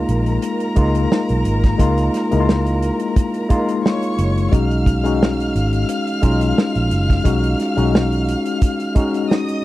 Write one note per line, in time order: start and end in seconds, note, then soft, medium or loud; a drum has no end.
0.00 0.76 G#3 medium
0.00 0.77 A#3 medium
0.00 0.78 D#4 medium
0.00 0.78 F4 medium
0.00 3.80 A#4 medium
0.00 3.80 A#5 medium
0.09 0.37 A#1 medium
0.09 closed hi-hat medium
0.26 closed hi-hat soft
0.42 closed hi-hat medium
0.60 closed hi-hat soft
0.76 1.05 C#2 medium
0.76 1.66 G#3 medium
0.76 1.66 A#3 medium
0.76 1.67 D#4 medium
0.76 1.67 F4 medium
0.76 kick medium
0.76 closed hi-hat medium
0.95 closed hi-hat soft
1.12 snare medium
1.29 1.43 B1 medium
1.29 closed hi-hat soft
1.45 1.74 G#1 medium
1.45 closed hi-hat medium
1.64 kick medium
1.64 snare soft
1.64 closed hi-hat soft
1.78 2.08 C#2 medium
1.78 2.24 G#3 medium
1.78 2.24 A#3 medium
1.78 2.25 D#4 medium
1.78 2.25 F4 medium
1.78 kick medium
1.78 closed hi-hat medium
1.98 closed hi-hat soft
2.14 snare soft
2.14 closed hi-hat medium
2.31 2.89 C#2 medium
2.31 3.35 G#3 medium
2.31 3.35 A#3 medium
2.31 3.35 D#4 medium
2.31 2.39 E4 medium
2.31 closed hi-hat soft
2.40 3.39 F4 medium
2.49 snare loud
2.66 closed hi-hat soft
2.82 closed hi-hat medium
3.00 closed hi-hat soft
3.16 kick medium
3.16 closed hi-hat medium
3.34 closed hi-hat soft
3.49 4.39 G#3 medium
3.49 4.39 A#3 medium
3.49 4.40 D#4 medium
3.49 4.40 F4 medium
3.49 kick medium
3.49 closed hi-hat medium
3.69 closed hi-hat medium
3.84 4.51 C#5 medium
3.84 4.51 C#6 medium
3.84 snare medium
4.03 closed hi-hat soft
4.18 4.47 F#1 medium
4.18 closed hi-hat medium
4.38 closed hi-hat soft
4.51 5.51 B1 medium
4.51 4.97 G#3 medium
4.51 4.97 C#4 medium
4.51 4.98 D#4 medium
4.51 4.98 F#4 medium
4.51 9.26 F5 medium
4.51 9.26 F6 medium
4.51 kick medium
4.51 closed hi-hat medium
4.71 closed hi-hat soft
4.86 kick medium
4.86 closed hi-hat medium
5.04 6.07 G#3 medium
5.04 6.08 C#4 medium
5.04 6.08 D#4 medium
5.04 6.09 F#4 medium
5.04 closed hi-hat soft
5.23 snare loud
5.40 closed hi-hat soft
5.55 5.83 G#1 medium
5.55 closed hi-hat medium
5.73 closed hi-hat soft
5.89 closed hi-hat medium
6.07 closed hi-hat soft
6.22 6.52 B1 medium
6.22 7.12 G#3 medium
6.22 7.12 C#4 medium
6.22 7.13 D#4 medium
6.22 7.13 F4 medium
6.22 kick medium
6.22 closed hi-hat medium
6.41 closed hi-hat medium
6.58 snare medium
6.75 6.89 A#1 medium
6.75 closed hi-hat soft
6.91 7.20 F#1 medium
6.91 closed hi-hat medium
7.10 kick medium
7.10 snare soft
7.10 closed hi-hat soft
7.24 7.54 B1 medium
7.24 7.70 G#3 medium
7.24 7.70 C#4 medium
7.24 7.70 D#4 medium
7.24 7.71 F#4 medium
7.24 kick medium
7.24 closed hi-hat medium
7.44 closed hi-hat soft
7.60 snare soft
7.60 closed hi-hat medium
7.76 8.34 B1 medium
7.76 8.80 G#3 medium
7.76 8.80 C#4 medium
7.76 8.81 D#4 medium
7.76 8.81 F#4 medium
7.76 closed hi-hat soft
7.95 snare loud
8.12 closed hi-hat soft
8.28 closed hi-hat medium
8.46 closed hi-hat soft
8.61 kick medium
8.61 closed hi-hat medium
8.80 closed hi-hat soft
8.95 9.65 G#3 medium
8.95 9.65 C#4 medium
8.95 9.65 D#4 medium
8.95 9.65 F#4 medium
8.95 kick medium
8.95 closed hi-hat medium
9.14 closed hi-hat soft
9.29 9.65 D#5 medium
9.29 9.65 D#6 medium
9.29 snare loud
9.48 closed hi-hat soft